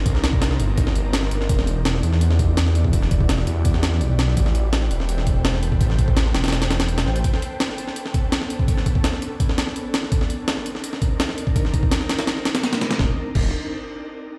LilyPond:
<<
  \new Staff \with { instrumentName = "Detuned saw bass" } { \clef bass \time 4/4 \key e \minor \tempo 4 = 167 c,8 c,4 g,,4. g,,8 g,,8 | e,,4. e,2~ e,8 | e,,8 e,,4 e,4. b,,4 | a,,4. e,,2~ e,,8 |
a,,8 a,,4 e,,8 e,,4. a,,8 | r1 | r1 | r1 |
r1 | e,,8 r8 e,,8 r2 r8 | }
  \new DrumStaff \with { instrumentName = "Drums" } \drummode { \time 4/4 <hh bd>16 sn16 <hh sn>16 bd16 <hh sn>16 sn16 hh8 <hh bd>16 sn16 hh8 <hh sn>16 sn16 hh16 sn16 | <hh bd>16 sn16 hh8 <hh sn>16 sn16 hh16 sn16 hh16 sn16 <hh bd>8 <hh sn>16 sn16 hh16 bd16 | <hh bd>16 sn16 <hh bd>16 bd16 <hh sn>16 sn16 hh8 <hh bd>16 sn16 <hh sn>16 sn16 hh8 <hh sn>16 sn16 | <hh bd>16 sn16 hh8 <hh sn>16 sn16 hh16 sn16 hh16 sn16 <hh bd>8 <hh sn>16 sn16 hh16 bd16 |
<hh bd>16 sn16 <hh bd>16 bd16 <hh sn>16 sn16 <hh sn>16 <hh sn>32 <hh sn>32 <hh sn>16 <hh sn>16 <hh sn>16 <hh sn>16 hh16 <hh sn>16 sn16 hh16 | <hh bd>16 sn16 hh8 <hh sn>16 sn16 hh16 sn16 hh16 sn16 <hh bd>8 <hh sn>16 sn16 hh16 bd16 | <hh bd>16 sn16 <hh bd>16 bd16 <hh sn>16 sn16 hh8 <hh bd>16 sn16 <hh sn>16 sn16 hh8 <hh sn>16 sn16 | <hh bd>16 sn16 hh8 <hh sn>16 sn16 hh16 sn16 hh16 sn16 <hh bd>8 <hh sn>16 sn16 hh16 bd16 |
<hh bd>16 sn16 <hh bd>16 bd16 <hh sn>16 sn16 <hh sn>16 <hh sn>16 <hh sn>16 sn16 <hh sn>16 <hh sn>16 <hh sn>16 <hh sn>16 <hh sn>16 <hh sn>16 | <bd sn>4 <cymc bd>4 r4 r4 | }
>>